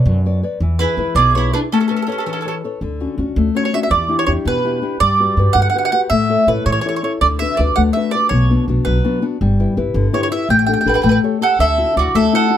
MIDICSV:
0, 0, Header, 1, 5, 480
1, 0, Start_track
1, 0, Key_signature, 2, "major"
1, 0, Tempo, 366077
1, 801, Time_signature, 6, 3, 24, 8
1, 16487, End_track
2, 0, Start_track
2, 0, Title_t, "Mandolin"
2, 0, Program_c, 0, 25
2, 1037, Note_on_c, 0, 71, 83
2, 1479, Note_off_c, 0, 71, 0
2, 1516, Note_on_c, 0, 74, 96
2, 1743, Note_off_c, 0, 74, 0
2, 1771, Note_on_c, 0, 73, 74
2, 1986, Note_off_c, 0, 73, 0
2, 2012, Note_on_c, 0, 71, 76
2, 2077, Note_off_c, 0, 71, 0
2, 2274, Note_on_c, 0, 69, 70
2, 2348, Note_off_c, 0, 69, 0
2, 2367, Note_on_c, 0, 69, 45
2, 2445, Note_off_c, 0, 69, 0
2, 2462, Note_on_c, 0, 69, 48
2, 2541, Note_off_c, 0, 69, 0
2, 2576, Note_on_c, 0, 69, 45
2, 2638, Note_off_c, 0, 69, 0
2, 2653, Note_on_c, 0, 69, 49
2, 2734, Note_off_c, 0, 69, 0
2, 2747, Note_on_c, 0, 69, 31
2, 2830, Note_off_c, 0, 69, 0
2, 2863, Note_on_c, 0, 69, 46
2, 2937, Note_off_c, 0, 69, 0
2, 2968, Note_on_c, 0, 69, 42
2, 3038, Note_off_c, 0, 69, 0
2, 3054, Note_on_c, 0, 69, 54
2, 3135, Note_off_c, 0, 69, 0
2, 3175, Note_on_c, 0, 69, 39
2, 3234, Note_off_c, 0, 69, 0
2, 3250, Note_on_c, 0, 69, 52
2, 3330, Note_off_c, 0, 69, 0
2, 4675, Note_on_c, 0, 73, 67
2, 4771, Note_off_c, 0, 73, 0
2, 4787, Note_on_c, 0, 73, 69
2, 4890, Note_off_c, 0, 73, 0
2, 4905, Note_on_c, 0, 76, 75
2, 4968, Note_off_c, 0, 76, 0
2, 5025, Note_on_c, 0, 76, 59
2, 5120, Note_off_c, 0, 76, 0
2, 5125, Note_on_c, 0, 74, 77
2, 5487, Note_off_c, 0, 74, 0
2, 5492, Note_on_c, 0, 73, 75
2, 5576, Note_off_c, 0, 73, 0
2, 5592, Note_on_c, 0, 73, 72
2, 5658, Note_off_c, 0, 73, 0
2, 5868, Note_on_c, 0, 71, 83
2, 6523, Note_off_c, 0, 71, 0
2, 6559, Note_on_c, 0, 74, 102
2, 7251, Note_on_c, 0, 78, 104
2, 7298, Note_off_c, 0, 74, 0
2, 7352, Note_off_c, 0, 78, 0
2, 7368, Note_on_c, 0, 78, 69
2, 7453, Note_off_c, 0, 78, 0
2, 7468, Note_on_c, 0, 78, 70
2, 7569, Note_off_c, 0, 78, 0
2, 7584, Note_on_c, 0, 78, 59
2, 7655, Note_off_c, 0, 78, 0
2, 7671, Note_on_c, 0, 78, 80
2, 7747, Note_off_c, 0, 78, 0
2, 7763, Note_on_c, 0, 78, 80
2, 7868, Note_off_c, 0, 78, 0
2, 7993, Note_on_c, 0, 76, 94
2, 8498, Note_off_c, 0, 76, 0
2, 8498, Note_on_c, 0, 71, 68
2, 8716, Note_off_c, 0, 71, 0
2, 8730, Note_on_c, 0, 73, 85
2, 8801, Note_off_c, 0, 73, 0
2, 8817, Note_on_c, 0, 73, 67
2, 8919, Note_off_c, 0, 73, 0
2, 8934, Note_on_c, 0, 73, 66
2, 9014, Note_off_c, 0, 73, 0
2, 9029, Note_on_c, 0, 73, 60
2, 9115, Note_off_c, 0, 73, 0
2, 9131, Note_on_c, 0, 73, 62
2, 9216, Note_off_c, 0, 73, 0
2, 9232, Note_on_c, 0, 73, 58
2, 9329, Note_off_c, 0, 73, 0
2, 9456, Note_on_c, 0, 74, 83
2, 9522, Note_off_c, 0, 74, 0
2, 9690, Note_on_c, 0, 76, 88
2, 9927, Note_on_c, 0, 74, 71
2, 9941, Note_off_c, 0, 76, 0
2, 10154, Note_off_c, 0, 74, 0
2, 10170, Note_on_c, 0, 78, 82
2, 10237, Note_off_c, 0, 78, 0
2, 10400, Note_on_c, 0, 76, 66
2, 10631, Note_off_c, 0, 76, 0
2, 10638, Note_on_c, 0, 74, 85
2, 10867, Note_off_c, 0, 74, 0
2, 10872, Note_on_c, 0, 73, 80
2, 11332, Note_off_c, 0, 73, 0
2, 11601, Note_on_c, 0, 71, 78
2, 12108, Note_off_c, 0, 71, 0
2, 13298, Note_on_c, 0, 73, 69
2, 13400, Note_off_c, 0, 73, 0
2, 13415, Note_on_c, 0, 73, 67
2, 13467, Note_off_c, 0, 73, 0
2, 13529, Note_on_c, 0, 76, 76
2, 13749, Note_off_c, 0, 76, 0
2, 13772, Note_on_c, 0, 79, 81
2, 13861, Note_off_c, 0, 79, 0
2, 13886, Note_on_c, 0, 79, 54
2, 13969, Note_off_c, 0, 79, 0
2, 13984, Note_on_c, 0, 79, 65
2, 14061, Note_off_c, 0, 79, 0
2, 14077, Note_on_c, 0, 79, 58
2, 14157, Note_off_c, 0, 79, 0
2, 14172, Note_on_c, 0, 79, 52
2, 14257, Note_off_c, 0, 79, 0
2, 14282, Note_on_c, 0, 79, 44
2, 14346, Note_off_c, 0, 79, 0
2, 14362, Note_on_c, 0, 79, 55
2, 14449, Note_off_c, 0, 79, 0
2, 14466, Note_on_c, 0, 79, 55
2, 14552, Note_off_c, 0, 79, 0
2, 14575, Note_on_c, 0, 79, 62
2, 14657, Note_off_c, 0, 79, 0
2, 14991, Note_on_c, 0, 78, 83
2, 15201, Note_off_c, 0, 78, 0
2, 15213, Note_on_c, 0, 76, 82
2, 15659, Note_off_c, 0, 76, 0
2, 15696, Note_on_c, 0, 74, 63
2, 15935, Note_on_c, 0, 76, 93
2, 15937, Note_off_c, 0, 74, 0
2, 16159, Note_off_c, 0, 76, 0
2, 16193, Note_on_c, 0, 78, 85
2, 16487, Note_off_c, 0, 78, 0
2, 16487, End_track
3, 0, Start_track
3, 0, Title_t, "Nylon-string guitar"
3, 0, Program_c, 1, 24
3, 0, Note_on_c, 1, 71, 46
3, 0, Note_on_c, 1, 73, 47
3, 0, Note_on_c, 1, 74, 51
3, 87, Note_on_c, 1, 54, 59
3, 236, Note_off_c, 1, 71, 0
3, 239, Note_off_c, 1, 73, 0
3, 243, Note_off_c, 1, 74, 0
3, 336, Note_on_c, 1, 71, 43
3, 343, Note_on_c, 1, 73, 40
3, 350, Note_on_c, 1, 74, 50
3, 551, Note_off_c, 1, 71, 0
3, 552, Note_off_c, 1, 54, 0
3, 558, Note_off_c, 1, 73, 0
3, 564, Note_off_c, 1, 74, 0
3, 566, Note_on_c, 1, 71, 42
3, 573, Note_on_c, 1, 73, 38
3, 580, Note_on_c, 1, 74, 47
3, 755, Note_off_c, 1, 71, 0
3, 759, Note_off_c, 1, 73, 0
3, 762, Note_off_c, 1, 74, 0
3, 813, Note_on_c, 1, 52, 61
3, 1049, Note_on_c, 1, 64, 37
3, 1055, Note_on_c, 1, 68, 39
3, 1064, Note_on_c, 1, 71, 44
3, 1272, Note_off_c, 1, 52, 0
3, 1273, Note_off_c, 1, 64, 0
3, 1275, Note_off_c, 1, 68, 0
3, 1279, Note_off_c, 1, 71, 0
3, 1288, Note_on_c, 1, 64, 43
3, 1293, Note_on_c, 1, 68, 39
3, 1295, Note_on_c, 1, 71, 47
3, 1528, Note_on_c, 1, 47, 58
3, 1669, Note_off_c, 1, 64, 0
3, 1670, Note_off_c, 1, 68, 0
3, 1673, Note_off_c, 1, 71, 0
3, 1765, Note_on_c, 1, 68, 40
3, 1771, Note_on_c, 1, 64, 43
3, 1777, Note_on_c, 1, 71, 50
3, 1988, Note_off_c, 1, 47, 0
3, 1990, Note_off_c, 1, 64, 0
3, 1998, Note_off_c, 1, 68, 0
3, 1998, Note_off_c, 1, 71, 0
3, 2005, Note_on_c, 1, 64, 39
3, 2012, Note_on_c, 1, 68, 38
3, 2017, Note_on_c, 1, 71, 46
3, 2192, Note_off_c, 1, 64, 0
3, 2196, Note_off_c, 1, 68, 0
3, 2196, Note_off_c, 1, 71, 0
3, 2263, Note_on_c, 1, 57, 55
3, 2485, Note_on_c, 1, 69, 36
3, 2495, Note_on_c, 1, 71, 33
3, 2506, Note_on_c, 1, 73, 41
3, 2710, Note_off_c, 1, 69, 0
3, 2711, Note_off_c, 1, 71, 0
3, 2716, Note_off_c, 1, 73, 0
3, 2719, Note_off_c, 1, 57, 0
3, 2724, Note_on_c, 1, 69, 40
3, 2729, Note_on_c, 1, 71, 41
3, 2731, Note_on_c, 1, 73, 50
3, 2967, Note_on_c, 1, 52, 49
3, 3113, Note_off_c, 1, 69, 0
3, 3113, Note_off_c, 1, 71, 0
3, 3117, Note_off_c, 1, 73, 0
3, 3215, Note_on_c, 1, 69, 44
3, 3219, Note_on_c, 1, 71, 43
3, 3228, Note_on_c, 1, 73, 45
3, 3436, Note_off_c, 1, 52, 0
3, 3450, Note_off_c, 1, 69, 0
3, 3455, Note_off_c, 1, 71, 0
3, 3459, Note_off_c, 1, 73, 0
3, 3465, Note_on_c, 1, 69, 39
3, 3473, Note_on_c, 1, 71, 34
3, 3475, Note_on_c, 1, 73, 46
3, 3649, Note_off_c, 1, 69, 0
3, 3652, Note_off_c, 1, 71, 0
3, 3655, Note_off_c, 1, 73, 0
3, 3699, Note_on_c, 1, 50, 59
3, 3938, Note_on_c, 1, 61, 38
3, 3941, Note_on_c, 1, 62, 35
3, 3947, Note_on_c, 1, 66, 41
3, 4162, Note_off_c, 1, 61, 0
3, 4162, Note_off_c, 1, 62, 0
3, 4163, Note_off_c, 1, 50, 0
3, 4172, Note_off_c, 1, 66, 0
3, 4176, Note_on_c, 1, 61, 49
3, 4181, Note_on_c, 1, 62, 37
3, 4188, Note_on_c, 1, 66, 47
3, 4422, Note_on_c, 1, 57, 55
3, 4561, Note_off_c, 1, 61, 0
3, 4562, Note_off_c, 1, 62, 0
3, 4568, Note_off_c, 1, 66, 0
3, 4652, Note_on_c, 1, 61, 46
3, 4655, Note_on_c, 1, 62, 43
3, 4668, Note_on_c, 1, 66, 48
3, 4879, Note_off_c, 1, 61, 0
3, 4884, Note_off_c, 1, 57, 0
3, 4887, Note_off_c, 1, 62, 0
3, 4895, Note_off_c, 1, 66, 0
3, 4895, Note_on_c, 1, 61, 48
3, 4903, Note_on_c, 1, 62, 45
3, 4911, Note_on_c, 1, 66, 51
3, 5082, Note_off_c, 1, 61, 0
3, 5087, Note_off_c, 1, 62, 0
3, 5092, Note_off_c, 1, 66, 0
3, 5132, Note_on_c, 1, 52, 61
3, 5356, Note_on_c, 1, 62, 47
3, 5362, Note_on_c, 1, 64, 40
3, 5374, Note_on_c, 1, 67, 46
3, 5586, Note_off_c, 1, 62, 0
3, 5589, Note_off_c, 1, 64, 0
3, 5596, Note_off_c, 1, 52, 0
3, 5599, Note_off_c, 1, 67, 0
3, 5601, Note_on_c, 1, 62, 54
3, 5606, Note_on_c, 1, 64, 39
3, 5614, Note_on_c, 1, 67, 52
3, 5845, Note_on_c, 1, 47, 63
3, 5990, Note_off_c, 1, 62, 0
3, 5991, Note_off_c, 1, 64, 0
3, 5997, Note_off_c, 1, 67, 0
3, 6087, Note_on_c, 1, 62, 48
3, 6093, Note_on_c, 1, 67, 54
3, 6095, Note_on_c, 1, 64, 39
3, 6302, Note_off_c, 1, 62, 0
3, 6311, Note_off_c, 1, 47, 0
3, 6313, Note_off_c, 1, 64, 0
3, 6315, Note_off_c, 1, 67, 0
3, 6318, Note_on_c, 1, 62, 46
3, 6330, Note_on_c, 1, 67, 50
3, 6332, Note_on_c, 1, 64, 38
3, 6509, Note_off_c, 1, 62, 0
3, 6516, Note_off_c, 1, 64, 0
3, 6517, Note_off_c, 1, 67, 0
3, 6581, Note_on_c, 1, 55, 58
3, 6816, Note_on_c, 1, 66, 45
3, 6827, Note_on_c, 1, 67, 39
3, 6827, Note_on_c, 1, 71, 46
3, 7036, Note_off_c, 1, 55, 0
3, 7038, Note_off_c, 1, 66, 0
3, 7052, Note_off_c, 1, 67, 0
3, 7052, Note_off_c, 1, 71, 0
3, 7054, Note_on_c, 1, 66, 56
3, 7067, Note_on_c, 1, 67, 45
3, 7070, Note_on_c, 1, 71, 63
3, 7284, Note_on_c, 1, 50, 65
3, 7435, Note_off_c, 1, 66, 0
3, 7443, Note_off_c, 1, 67, 0
3, 7443, Note_off_c, 1, 71, 0
3, 7525, Note_on_c, 1, 66, 48
3, 7534, Note_on_c, 1, 67, 45
3, 7541, Note_on_c, 1, 71, 48
3, 7750, Note_off_c, 1, 50, 0
3, 7756, Note_off_c, 1, 66, 0
3, 7759, Note_off_c, 1, 67, 0
3, 7771, Note_on_c, 1, 66, 49
3, 7773, Note_off_c, 1, 71, 0
3, 7777, Note_on_c, 1, 67, 41
3, 7789, Note_on_c, 1, 71, 48
3, 7958, Note_off_c, 1, 66, 0
3, 7960, Note_off_c, 1, 67, 0
3, 7969, Note_off_c, 1, 71, 0
3, 8019, Note_on_c, 1, 57, 63
3, 8254, Note_on_c, 1, 64, 40
3, 8261, Note_on_c, 1, 69, 38
3, 8266, Note_on_c, 1, 73, 51
3, 8476, Note_off_c, 1, 64, 0
3, 8479, Note_off_c, 1, 69, 0
3, 8482, Note_off_c, 1, 57, 0
3, 8484, Note_off_c, 1, 73, 0
3, 8490, Note_on_c, 1, 64, 46
3, 8499, Note_on_c, 1, 69, 42
3, 8500, Note_on_c, 1, 73, 57
3, 8741, Note_on_c, 1, 52, 54
3, 8880, Note_off_c, 1, 64, 0
3, 8881, Note_off_c, 1, 69, 0
3, 8884, Note_off_c, 1, 73, 0
3, 8986, Note_on_c, 1, 64, 40
3, 8995, Note_on_c, 1, 69, 41
3, 8995, Note_on_c, 1, 73, 47
3, 9203, Note_off_c, 1, 64, 0
3, 9206, Note_off_c, 1, 69, 0
3, 9207, Note_off_c, 1, 52, 0
3, 9217, Note_off_c, 1, 73, 0
3, 9218, Note_on_c, 1, 64, 46
3, 9224, Note_on_c, 1, 69, 42
3, 9232, Note_on_c, 1, 73, 51
3, 9408, Note_off_c, 1, 64, 0
3, 9410, Note_off_c, 1, 69, 0
3, 9416, Note_off_c, 1, 73, 0
3, 9462, Note_on_c, 1, 50, 56
3, 9720, Note_on_c, 1, 62, 46
3, 9726, Note_on_c, 1, 66, 40
3, 9730, Note_on_c, 1, 71, 47
3, 9928, Note_off_c, 1, 50, 0
3, 9935, Note_off_c, 1, 62, 0
3, 9945, Note_off_c, 1, 66, 0
3, 9949, Note_off_c, 1, 71, 0
3, 9951, Note_on_c, 1, 62, 47
3, 9959, Note_on_c, 1, 66, 43
3, 9970, Note_on_c, 1, 71, 51
3, 10190, Note_on_c, 1, 57, 57
3, 10332, Note_off_c, 1, 62, 0
3, 10338, Note_off_c, 1, 66, 0
3, 10341, Note_off_c, 1, 71, 0
3, 10434, Note_on_c, 1, 62, 47
3, 10442, Note_on_c, 1, 66, 41
3, 10449, Note_on_c, 1, 71, 55
3, 10651, Note_off_c, 1, 57, 0
3, 10660, Note_off_c, 1, 62, 0
3, 10667, Note_off_c, 1, 66, 0
3, 10670, Note_off_c, 1, 71, 0
3, 10675, Note_on_c, 1, 62, 46
3, 10683, Note_on_c, 1, 66, 43
3, 10687, Note_on_c, 1, 71, 49
3, 10859, Note_off_c, 1, 62, 0
3, 10864, Note_off_c, 1, 66, 0
3, 10865, Note_off_c, 1, 71, 0
3, 10911, Note_on_c, 1, 47, 62
3, 11150, Note_on_c, 1, 59, 45
3, 11156, Note_on_c, 1, 62, 39
3, 11162, Note_on_c, 1, 66, 50
3, 11372, Note_off_c, 1, 47, 0
3, 11375, Note_off_c, 1, 59, 0
3, 11377, Note_off_c, 1, 62, 0
3, 11380, Note_off_c, 1, 66, 0
3, 11390, Note_on_c, 1, 62, 39
3, 11397, Note_on_c, 1, 59, 45
3, 11397, Note_on_c, 1, 66, 55
3, 11624, Note_on_c, 1, 54, 54
3, 11771, Note_off_c, 1, 59, 0
3, 11772, Note_off_c, 1, 62, 0
3, 11773, Note_off_c, 1, 66, 0
3, 11856, Note_on_c, 1, 62, 44
3, 11863, Note_on_c, 1, 59, 55
3, 11863, Note_on_c, 1, 66, 53
3, 12071, Note_off_c, 1, 59, 0
3, 12076, Note_off_c, 1, 62, 0
3, 12081, Note_off_c, 1, 66, 0
3, 12085, Note_off_c, 1, 54, 0
3, 12090, Note_on_c, 1, 59, 43
3, 12091, Note_on_c, 1, 62, 45
3, 12097, Note_on_c, 1, 66, 53
3, 12278, Note_off_c, 1, 59, 0
3, 12281, Note_off_c, 1, 62, 0
3, 12284, Note_off_c, 1, 66, 0
3, 12342, Note_on_c, 1, 55, 70
3, 12583, Note_on_c, 1, 64, 39
3, 12586, Note_on_c, 1, 67, 46
3, 12588, Note_on_c, 1, 71, 54
3, 12795, Note_off_c, 1, 64, 0
3, 12796, Note_off_c, 1, 67, 0
3, 12800, Note_off_c, 1, 55, 0
3, 12805, Note_off_c, 1, 71, 0
3, 12809, Note_on_c, 1, 67, 52
3, 12814, Note_on_c, 1, 64, 51
3, 12820, Note_on_c, 1, 71, 55
3, 13051, Note_on_c, 1, 50, 61
3, 13194, Note_off_c, 1, 64, 0
3, 13195, Note_off_c, 1, 67, 0
3, 13200, Note_off_c, 1, 71, 0
3, 13285, Note_on_c, 1, 64, 51
3, 13285, Note_on_c, 1, 67, 46
3, 13297, Note_on_c, 1, 71, 55
3, 13506, Note_off_c, 1, 64, 0
3, 13507, Note_off_c, 1, 67, 0
3, 13510, Note_off_c, 1, 71, 0
3, 13515, Note_off_c, 1, 50, 0
3, 13520, Note_on_c, 1, 67, 39
3, 13527, Note_on_c, 1, 71, 52
3, 13529, Note_on_c, 1, 64, 47
3, 13713, Note_off_c, 1, 64, 0
3, 13714, Note_off_c, 1, 67, 0
3, 13716, Note_off_c, 1, 71, 0
3, 13765, Note_on_c, 1, 57, 54
3, 14003, Note_on_c, 1, 62, 41
3, 14011, Note_on_c, 1, 67, 34
3, 14014, Note_on_c, 1, 69, 42
3, 14221, Note_off_c, 1, 62, 0
3, 14225, Note_off_c, 1, 69, 0
3, 14227, Note_off_c, 1, 67, 0
3, 14233, Note_off_c, 1, 57, 0
3, 14234, Note_on_c, 1, 62, 53
3, 14243, Note_on_c, 1, 67, 42
3, 14244, Note_on_c, 1, 69, 57
3, 14431, Note_off_c, 1, 62, 0
3, 14433, Note_off_c, 1, 69, 0
3, 14434, Note_off_c, 1, 67, 0
3, 14485, Note_on_c, 1, 57, 57
3, 14732, Note_on_c, 1, 67, 43
3, 14740, Note_on_c, 1, 69, 44
3, 14742, Note_on_c, 1, 73, 53
3, 14947, Note_off_c, 1, 67, 0
3, 14953, Note_off_c, 1, 57, 0
3, 14953, Note_off_c, 1, 69, 0
3, 14960, Note_off_c, 1, 73, 0
3, 14963, Note_on_c, 1, 67, 47
3, 14968, Note_on_c, 1, 69, 41
3, 14975, Note_on_c, 1, 73, 48
3, 15155, Note_off_c, 1, 67, 0
3, 15158, Note_off_c, 1, 69, 0
3, 15162, Note_off_c, 1, 73, 0
3, 15200, Note_on_c, 1, 50, 52
3, 15443, Note_on_c, 1, 62, 39
3, 15452, Note_on_c, 1, 66, 51
3, 15453, Note_on_c, 1, 64, 42
3, 15669, Note_off_c, 1, 64, 0
3, 15671, Note_off_c, 1, 62, 0
3, 15672, Note_off_c, 1, 50, 0
3, 15674, Note_off_c, 1, 66, 0
3, 15684, Note_on_c, 1, 62, 49
3, 15691, Note_on_c, 1, 66, 47
3, 15692, Note_on_c, 1, 64, 42
3, 15927, Note_on_c, 1, 57, 60
3, 16073, Note_off_c, 1, 64, 0
3, 16074, Note_off_c, 1, 62, 0
3, 16076, Note_off_c, 1, 66, 0
3, 16157, Note_on_c, 1, 62, 51
3, 16166, Note_on_c, 1, 66, 52
3, 16168, Note_on_c, 1, 64, 44
3, 16372, Note_off_c, 1, 62, 0
3, 16379, Note_off_c, 1, 64, 0
3, 16387, Note_off_c, 1, 66, 0
3, 16388, Note_on_c, 1, 62, 41
3, 16394, Note_off_c, 1, 57, 0
3, 16394, Note_on_c, 1, 64, 40
3, 16403, Note_on_c, 1, 66, 47
3, 16487, Note_off_c, 1, 62, 0
3, 16487, Note_off_c, 1, 64, 0
3, 16487, Note_off_c, 1, 66, 0
3, 16487, End_track
4, 0, Start_track
4, 0, Title_t, "Mandolin"
4, 0, Program_c, 2, 25
4, 1054, Note_on_c, 2, 64, 77
4, 1488, Note_off_c, 2, 64, 0
4, 1535, Note_on_c, 2, 68, 70
4, 1753, Note_off_c, 2, 68, 0
4, 1803, Note_on_c, 2, 64, 62
4, 2003, Note_off_c, 2, 64, 0
4, 2024, Note_on_c, 2, 62, 69
4, 2090, Note_off_c, 2, 62, 0
4, 2261, Note_on_c, 2, 61, 62
4, 2342, Note_off_c, 2, 61, 0
4, 2374, Note_on_c, 2, 61, 41
4, 2449, Note_off_c, 2, 61, 0
4, 2478, Note_on_c, 2, 61, 42
4, 2550, Note_off_c, 2, 61, 0
4, 2585, Note_on_c, 2, 61, 34
4, 2652, Note_off_c, 2, 61, 0
4, 2710, Note_on_c, 2, 61, 42
4, 2764, Note_off_c, 2, 61, 0
4, 2779, Note_on_c, 2, 61, 37
4, 2846, Note_off_c, 2, 61, 0
4, 2885, Note_on_c, 2, 61, 41
4, 2949, Note_off_c, 2, 61, 0
4, 2971, Note_on_c, 2, 61, 36
4, 3037, Note_off_c, 2, 61, 0
4, 3053, Note_on_c, 2, 61, 40
4, 3134, Note_off_c, 2, 61, 0
4, 3157, Note_on_c, 2, 61, 38
4, 3237, Note_off_c, 2, 61, 0
4, 3253, Note_on_c, 2, 61, 47
4, 3332, Note_off_c, 2, 61, 0
4, 14260, Note_on_c, 2, 71, 45
4, 14329, Note_off_c, 2, 71, 0
4, 14345, Note_on_c, 2, 71, 52
4, 14430, Note_off_c, 2, 71, 0
4, 14446, Note_on_c, 2, 71, 37
4, 14526, Note_off_c, 2, 71, 0
4, 14542, Note_on_c, 2, 71, 59
4, 14639, Note_off_c, 2, 71, 0
4, 14976, Note_on_c, 2, 69, 65
4, 15193, Note_off_c, 2, 69, 0
4, 15226, Note_on_c, 2, 69, 63
4, 15666, Note_off_c, 2, 69, 0
4, 15721, Note_on_c, 2, 66, 63
4, 15927, Note_off_c, 2, 66, 0
4, 15952, Note_on_c, 2, 69, 63
4, 16168, Note_off_c, 2, 69, 0
4, 16202, Note_on_c, 2, 69, 76
4, 16487, Note_off_c, 2, 69, 0
4, 16487, End_track
5, 0, Start_track
5, 0, Title_t, "Upright bass"
5, 0, Program_c, 3, 32
5, 73, Note_on_c, 3, 42, 91
5, 542, Note_off_c, 3, 42, 0
5, 792, Note_on_c, 3, 40, 80
5, 1107, Note_off_c, 3, 40, 0
5, 1274, Note_on_c, 3, 52, 73
5, 1429, Note_off_c, 3, 52, 0
5, 1507, Note_on_c, 3, 35, 92
5, 1976, Note_off_c, 3, 35, 0
5, 3686, Note_on_c, 3, 38, 66
5, 4001, Note_off_c, 3, 38, 0
5, 4165, Note_on_c, 3, 38, 70
5, 4321, Note_off_c, 3, 38, 0
5, 4409, Note_on_c, 3, 38, 88
5, 4568, Note_off_c, 3, 38, 0
5, 5119, Note_on_c, 3, 40, 80
5, 5435, Note_off_c, 3, 40, 0
5, 5608, Note_on_c, 3, 40, 74
5, 5762, Note_off_c, 3, 40, 0
5, 5839, Note_on_c, 3, 40, 76
5, 6000, Note_off_c, 3, 40, 0
5, 6562, Note_on_c, 3, 43, 71
5, 6873, Note_off_c, 3, 43, 0
5, 7040, Note_on_c, 3, 43, 74
5, 7194, Note_off_c, 3, 43, 0
5, 7277, Note_on_c, 3, 43, 88
5, 7437, Note_off_c, 3, 43, 0
5, 8005, Note_on_c, 3, 45, 76
5, 8319, Note_off_c, 3, 45, 0
5, 8484, Note_on_c, 3, 45, 69
5, 8641, Note_off_c, 3, 45, 0
5, 8729, Note_on_c, 3, 45, 87
5, 8889, Note_off_c, 3, 45, 0
5, 9456, Note_on_c, 3, 38, 75
5, 9771, Note_off_c, 3, 38, 0
5, 9951, Note_on_c, 3, 38, 71
5, 10101, Note_off_c, 3, 38, 0
5, 10196, Note_on_c, 3, 38, 81
5, 10349, Note_off_c, 3, 38, 0
5, 10894, Note_on_c, 3, 35, 86
5, 11209, Note_off_c, 3, 35, 0
5, 11378, Note_on_c, 3, 35, 66
5, 11532, Note_off_c, 3, 35, 0
5, 11620, Note_on_c, 3, 35, 81
5, 11777, Note_off_c, 3, 35, 0
5, 12337, Note_on_c, 3, 31, 80
5, 12645, Note_off_c, 3, 31, 0
5, 12816, Note_on_c, 3, 31, 76
5, 12967, Note_off_c, 3, 31, 0
5, 13038, Note_on_c, 3, 31, 86
5, 13199, Note_off_c, 3, 31, 0
5, 13752, Note_on_c, 3, 33, 78
5, 14070, Note_off_c, 3, 33, 0
5, 14236, Note_on_c, 3, 33, 66
5, 14394, Note_off_c, 3, 33, 0
5, 14474, Note_on_c, 3, 33, 87
5, 14637, Note_off_c, 3, 33, 0
5, 15197, Note_on_c, 3, 38, 75
5, 15514, Note_off_c, 3, 38, 0
5, 15690, Note_on_c, 3, 38, 71
5, 15844, Note_off_c, 3, 38, 0
5, 15926, Note_on_c, 3, 38, 74
5, 16085, Note_off_c, 3, 38, 0
5, 16487, End_track
0, 0, End_of_file